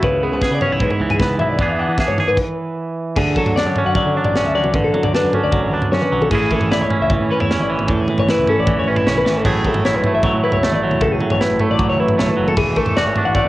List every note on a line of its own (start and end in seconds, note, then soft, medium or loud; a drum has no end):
0.00 0.28 C#2 medium
0.00 0.81 C#3 medium
0.00 0.62 E4 medium
0.00 0.23 B4 medium
0.00 kick loud
0.00 floor tom medium
0.23 1.21 B3 medium
0.23 0.33 G#4 medium
0.32 0.40 C#2 medium
0.32 0.53 B4 medium
0.42 1.58 G#4 medium
0.42 kick loud
0.42 snare medium
0.51 0.60 C#3 medium
0.51 0.62 D5 medium
0.61 0.72 C#4 medium
0.61 0.82 C#5 medium
0.61 floor tom medium
0.61 mid tom medium
0.71 0.88 B1 medium
0.71 1.40 E4 soft
0.80 1.58 G#2 medium
0.80 0.91 B4 medium
0.80 kick loud
0.80 floor tom medium
0.91 1.11 C#5 medium
0.91 floor tom medium
1.00 1.17 C#2 medium
1.00 1.59 E3 medium
1.10 1.21 G#4 medium
1.10 floor tom medium
1.20 1.39 C#2 loud
1.20 1.58 B3 medium
1.20 1.39 B4 medium
1.20 kick loud
1.20 snare medium
1.20 floor tom medium
1.30 floor tom medium
1.39 1.56 B1 loud
1.39 1.58 E4 medium
1.39 1.49 E5 medium
1.39 floor tom medium
1.39 mid tom medium
1.49 1.69 D5 medium
1.59 1.84 E2 loud
1.59 3.37 E3 medium
1.59 2.37 B3 medium
1.59 1.78 D4 medium
1.59 1.99 G#4 medium
1.59 kick loud
1.59 floor tom medium
1.69 1.79 E5 medium
1.79 2.36 D4 medium
1.79 1.98 F#5 medium
1.88 1.97 E3 medium
1.98 2.19 G#4 medium
1.98 2.09 E5 medium
1.98 kick loud
1.98 snare medium
2.08 2.17 G#2 medium
2.08 2.28 C#5 medium
2.08 floor tom medium
2.18 2.37 G#4 medium
2.18 floor tom medium
2.18 mid tom medium
2.28 2.37 G#2 medium
2.28 2.38 B4 medium
2.37 kick loud
2.37 crash medium
3.16 3.33 D2 medium
3.16 4.72 D3 medium
3.16 3.36 G#4 loud
3.16 kick loud
3.16 floor tom medium
3.16 crash loud
3.36 3.96 F#3 medium
3.36 3.56 A4 medium
3.36 kick medium
3.36 mid tom medium
3.46 3.66 D2 medium
3.46 floor tom loud
3.56 4.16 D4 medium
3.56 3.67 D5 medium
3.56 snare medium
3.66 3.74 F#2 medium
3.66 3.86 C#5 medium
3.76 4.36 C#4 medium
3.76 floor tom medium
3.86 4.02 F#2 medium
3.86 3.95 F#5 medium
3.95 4.54 F#3 medium
3.95 4.15 D5 medium
3.95 kick loud
3.95 floor tom medium
3.95 mid tom medium
4.05 4.14 D3 medium
4.15 4.73 D4 medium
4.15 4.25 C#5 medium
4.25 4.42 A1 medium
4.25 4.45 D5 medium
4.25 floor tom medium
4.36 4.78 C#4 medium
4.36 snare medium
4.44 4.61 D2 medium
4.44 4.54 E5 medium
4.44 mid tom medium
4.55 4.72 F#3 medium
4.55 4.74 D5 medium
4.64 4.73 C#2 medium
4.64 mid tom medium
4.74 4.91 A1 loud
4.74 6.29 D3 medium
4.74 4.84 B4 loud
4.74 kick loud
4.74 floor tom medium
4.84 5.04 A4 medium
4.94 5.51 F#3 medium
4.94 mid tom medium
5.03 5.12 D2 loud
5.03 5.13 D5 medium
5.03 floor tom medium
5.14 5.72 D4 medium
5.14 5.34 B4 medium
5.14 snare medium
5.24 5.32 F#2 loud
5.33 5.93 C#4 medium
5.33 5.43 A4 medium
5.33 floor tom medium
5.44 5.60 D2 medium
5.44 5.63 D5 medium
5.52 6.11 F#3 medium
5.52 kick loud
5.52 floor tom medium
5.52 mid tom medium
5.63 5.71 A1 medium
5.63 5.72 C#5 medium
5.72 5.89 D2 medium
5.72 6.29 D4 medium
5.72 5.92 B4 medium
5.82 floor tom medium
5.92 6.00 F#2 loud
5.92 6.33 C#4 medium
5.92 6.02 C#5 medium
5.92 snare medium
6.02 6.21 B4 medium
6.02 mid tom medium
6.12 6.28 B1 loud
6.12 6.29 F#3 medium
6.22 6.31 A4 medium
6.22 mid tom medium
6.31 6.48 A1 loud
6.31 7.89 A2 medium
6.31 6.51 E3 medium
6.31 6.90 C#4 medium
6.31 6.71 E4 medium
6.31 6.52 G#4 loud
6.31 7.92 G#4 medium
6.31 kick loud
6.31 floor tom medium
6.31 crash medium
6.51 7.10 E3 medium
6.51 6.71 A4 medium
6.51 kick medium
6.51 mid tom medium
6.61 6.81 A1 medium
6.61 floor tom medium
6.71 7.30 E4 medium
6.71 6.81 D5 medium
6.71 snare medium
6.81 6.89 C#2 medium
6.81 7.01 C#5 medium
6.90 7.30 C#4 medium
6.90 floor tom medium
7.01 7.17 C#2 medium
7.01 7.12 E5 medium
7.10 7.69 E3 medium
7.10 7.30 C#5 medium
7.10 kick loud
7.10 floor tom medium
7.10 mid tom medium
7.20 7.28 A2 medium
7.30 7.40 C#4 medium
7.30 7.40 B4 medium
7.40 7.56 E2 medium
7.40 7.89 E4 medium
7.40 7.61 C#5 medium
7.40 floor tom medium
7.51 8.48 C#4 medium
7.51 snare medium
7.59 7.76 A1 medium
7.59 7.70 D5 medium
7.59 mid tom medium
7.70 8.09 E3 medium
7.70 7.90 C#5 medium
7.79 7.87 G#1 medium
7.79 mid tom medium
7.88 8.05 E2 loud
7.88 9.44 A2 medium
7.88 8.00 A4 loud
7.88 kick loud
7.88 floor tom medium
8.00 8.19 G#4 medium
8.08 8.67 E3 medium
8.08 mid tom medium
8.18 8.26 A1 loud
8.18 8.29 C#5 medium
8.18 floor tom medium
8.29 8.87 E4 medium
8.29 8.48 B4 medium
8.29 snare medium
8.38 8.46 C#2 medium
8.47 8.87 C#4 medium
8.47 8.58 A4 medium
8.47 floor tom medium
8.58 8.74 A1 medium
8.58 8.78 D5 medium
8.67 9.25 E3 medium
8.67 kick loud
8.67 floor tom medium
8.67 mid tom medium
8.77 8.85 E2 medium
8.77 8.89 C#5 medium
8.87 9.03 A1 medium
8.87 8.96 C#4 medium
8.87 9.08 B4 medium
8.96 9.45 E4 medium
8.96 floor tom medium
9.06 9.24 B1 medium
9.06 9.45 C#4 medium
9.06 9.17 C#5 medium
9.06 snare medium
9.15 9.37 B4 medium
9.15 mid tom medium
9.25 9.44 A1 medium
9.25 9.45 E3 medium
9.25 snare medium
9.37 9.47 A4 medium
9.44 9.62 A1 medium
9.44 10.99 A2 medium
9.44 9.64 F#3 medium
9.44 10.06 A3 medium
9.44 9.85 E4 medium
9.44 11.00 G#4 medium
9.44 9.66 G#4 medium
9.44 kick loud
9.44 floor tom medium
9.44 crash loud
9.64 10.23 F#3 medium
9.64 9.85 A4 medium
9.64 kick medium
9.64 mid tom medium
9.74 9.94 A1 medium
9.74 floor tom loud
9.85 10.44 E4 medium
9.85 9.96 C#5 medium
9.85 snare medium
9.94 10.02 B1 medium
9.94 10.14 B4 medium
10.04 10.63 A3 medium
10.04 floor tom medium
10.14 10.30 A1 medium
10.14 10.23 E5 medium
10.23 10.83 F#3 medium
10.23 10.43 C#5 medium
10.23 kick loud
10.23 floor tom medium
10.23 mid tom medium
10.33 10.42 A2 medium
10.44 11.24 E4 medium
10.44 10.53 B4 medium
10.52 10.69 C#2 medium
10.52 10.73 C#5 medium
10.52 floor tom medium
10.63 11.60 A3 medium
10.63 snare medium
10.72 10.89 A1 medium
10.72 10.82 D5 medium
10.72 mid tom medium
10.82 11.21 F#3 medium
10.82 11.02 C#5 medium
10.91 11.01 E1 medium
10.91 mid tom medium
11.01 11.18 C#2 loud
11.01 12.55 A2 medium
11.01 11.12 A4 loud
11.01 kick loud
11.01 floor tom medium
11.12 11.31 G#4 medium
11.20 11.78 F#3 medium
11.20 mid tom medium
11.30 11.40 A1 loud
11.30 11.41 C#5 medium
11.30 floor tom loud
11.41 11.99 E4 medium
11.41 11.61 B4 medium
11.41 snare medium
11.51 11.59 A1 loud
11.59 12.18 A3 medium
11.59 11.70 A4 medium
11.59 floor tom medium
11.70 11.87 A1 medium
11.70 11.89 D5 medium
11.79 12.36 F#3 medium
11.79 kick loud
11.79 floor tom medium
11.79 mid tom medium
11.89 11.98 C#2 medium
11.89 12.00 C#5 medium
12.00 12.16 A1 medium
12.00 13.01 E4 medium
12.00 12.19 B4 medium
12.08 floor tom medium
12.18 12.27 B1 medium
12.18 12.76 A3 medium
12.18 12.29 C#5 medium
12.18 snare medium
12.28 12.48 B4 medium
12.28 mid tom medium
12.37 12.55 F#1 medium
12.37 12.57 F#3 medium
12.48 12.58 A4 medium
12.48 mid tom medium
12.57 12.74 E1 loud
12.57 13.48 E3 medium
12.57 12.77 G#4 loud
12.57 kick loud
12.57 floor tom medium
12.57 crash loud
12.76 13.35 A3 medium
12.76 12.96 A4 medium
12.76 kick medium
12.76 mid tom medium
12.86 13.07 E1 medium
12.86 floor tom medium
12.97 13.48 F#4 medium
12.97 13.06 D5 medium
12.97 snare medium
13.06 13.15 G#1 medium
13.06 13.25 C#5 medium
13.16 13.48 D4 medium
13.16 floor tom medium
13.25 13.42 A1 medium
13.25 13.35 F#5 medium
13.35 13.48 A3 medium
13.35 13.48 D5 medium
13.35 kick loud
13.35 floor tom medium
13.35 mid tom medium